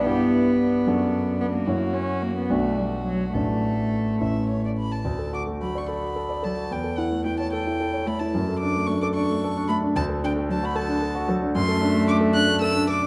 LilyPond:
<<
  \new Staff \with { instrumentName = "Violin" } { \time 6/8 \key d \major \tempo 4. = 74 g'8 e'8 d'2 | fis'4. fis'4. | a'4. e''8 cis''16 d''16 b''16 a''16~ | a''8 d'''8 b''16 cis'''16 b''4 a''8 |
g''8 fis''8 g''16 a''16 g''4 b''16 a''16~ | a''8 d'''8 cis'''16 d'''16 cis'''4 b''8 | a''8 g''8 a''16 b''16 a''4 r8 | \key d \mixolydian c'''4 d'''8 fis'''8 e'''8 d'''8 | }
  \new Staff \with { instrumentName = "Grand piano" } { \time 6/8 \key d \major <g, b e' g'>4. <fis, d' fis' a'>4. | <fis, e' fis' cis''>4. <b,, d' fis' d''>4. | <a,, d' fis' d''>4. <a,, cis' e' e''>4. | d,16 a'16 fis'16 a16 fis'16 d''16 a'16 fis'16 a'16 d''16 a'16 fis'16 |
e,16 a'16 e'16 a16 e'16 cis''16 a'16 e'16 a'16 cis''16 a'16 e'16 | fis,16 a'16 d'16 a16 d'16 a'16 d'16 a16 a'16 d'16 a'16 d'16 | d,16 a'16 d'16 a16 d'16 fis'16 a'16 d'16 a'16 fis'16 a'16 d'16 | \key d \mixolydian fis,16 a'16 d'16 a16 d'16 a'16 d'16 a16 a'16 d'16 a'16 d'16 | }
  \new Staff \with { instrumentName = "Cello" } { \time 6/8 \key d \major b2~ b8 b16 bes16~ | bes8 cis'8 bes16 b16 a8 g8 fis8 | a2~ a8 r8 | r4 fis8 r4 fis8 |
r4 a8 r4 a8 | r4 a8 r4 a8 | r4 fis8 r4 fis8 | \key d \mixolydian a2. | }
>>